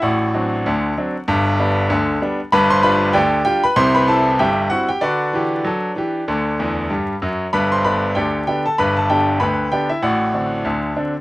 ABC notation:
X:1
M:2/4
L:1/16
Q:"Swing 16ths" 1/4=96
K:G
V:1 name="Grand piano"
[Fdf]8- | [Fdf]6 z2 | [Bb] [cc'] [Bb]2 [Gdg]2 [Gg] [Bb] | [cc'] [Bb] [Aa]2 [Geg]2 [Ff] [Gg] |
[DBd]8- | [DBd]4 z4 | [Bb] [cc'] [Bb]2 [Gdg]2 [Gg] [Aa] | [Bb] [Aa] [Gg]2 [Bgb]2 [Gg] [Ee] |
[Fdf]8 |]
V:2 name="Grand piano" clef=bass
[A,,,A,,]2 [F,CD]2 [D,,D,]2 [F,CD]2 | [G,,,G,,]2 [G,B,D]2 [D,,D,]2 [G,B,D]2 | [G,,,G,,]2 [G,D=F]2 [D,,D,]2 [G,DF]2 | [C,,C,]2 [G,CE]2 [G,,,G,,]2 [G,CE]2 |
[D,F]2 [E,G]2 [F,A]2 [E,G]2 | [D,,D,]2 [E,,E,]2 [G,,G,]2 [F,,F,]2 | [G,,,G,,]2 [D,B,D]2 [D,,D,]2 [D,B,D]2 | [G,,,G,,]2 [D,B,D]2 [D,,D,]2 [D,B,D]2 |
[A,,,A,,]2 [D,CD]2 [D,,D,]2 [D,CD]2 |]